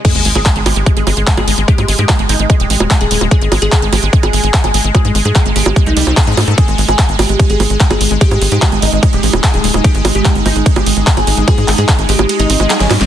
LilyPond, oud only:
\new Staff \with { instrumentName = "Oud" } { \time 4/4 \tempo 4 = 147 aes'8 r16 aes'8 r16 g'8 r16 aes'8. r16 aes'8 r16 | g'8 r16 g'8 r16 ees'8 r16 g'8. r16 aes'8 r16 | aes'8 r16 aes'8 r16 g'8 r16 aes'8. r16 aes'8 r16 | aes'8 r16 aes'8 r16 g'8 r16 ees'8. r16 des'8 r16 |
aes'8 r16 aes'8 r16 g'8 r16 aes'8. r16 aes'8 r16 | g'8 r16 g'8 r16 ees'8 r16 g'8. r16 aes'8 r16 | g'8 r16 g'8 r16 ees'8 r16 g'8. r16 aes'8 r16 | aes'8 r16 aes'8 r16 g'8 r16 ees'8. r16 des'8 r16 | }